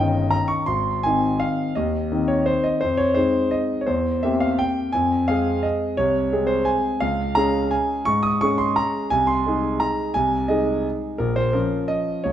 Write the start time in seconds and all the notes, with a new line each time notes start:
Already playing: G1 D#3 C#4 D#5 G5
0.00 D#4
0.31 A#5
0.48 C#6
0.66 G#1 C6
1.03 D#3 C4 D#4 G#5
1.40 F5
1.75 D#2 D#5
2.12 D#3 C4 D#4
2.28 C#5
2.46 C5
2.64 D#5
2.81 F2 C5
2.97 C#5
3.14 G#3 C4 D#4 C5
3.51 D#5
3.81 C#5
3.86 E2 C5
4.23 A#3 C4 G4 E5
4.40 F5
4.59 G5
4.92 F2 G#5
5.28 G#3 C4 G#4 F5
5.63 D#5
5.97 C2 C#5
6.32 G#3 C4 G#4
6.47 C5
6.65 G#5
7.00 C#2 F5
7.35 G#3 C#4 G#4 A#5
7.71 G#5
8.05 G#2 C#6
8.23 D#6
8.41 G#3 C#4 G#4 C#6
8.58 C6
8.76 A#5
9.10 C2 G#5
9.27 C6
9.46 G#3 D#4 G#4
9.80 A#5
10.14 C2 G#5
10.48 G#3 D#4 G#4 D#5
11.18 A#1 A#4
11.36 C5
11.53 F3 C#4 A#4
11.88 D#5
12.24 C#2 C#5